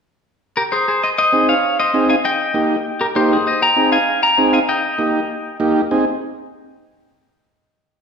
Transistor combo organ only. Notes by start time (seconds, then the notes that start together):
1.32 C4 D#4 G#4
1.94 C4 D#4 G#4
2.54 A#3 D#4 G4
3.15 A#3 D#4 G4
3.76 C4 D#4 G#4
4.38 C4 D#4 G#4
4.98 A#3 D#4 G4
5.60 A#3 D#4 G4
5.91 C4 D#4 G#4